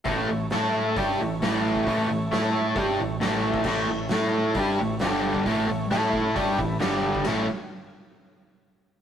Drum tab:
CC |----------------|----------------|x---------------|----------------|
RD |----------------|----------------|----------------|----------------|
HH |o---o---o---o---|o---o---o---o---|----o---o---o---|o---o---o---o---|
SD |----o-------o---|----o-------o---|----o-------o---|----o-------o---|
BD |o-------o------o|o-------o------o|o-------o------o|o-----o-o-o----o|

CC |----------------|
RD |b---------------|
HH |----------------|
SD |o---------------|
BD |----------------|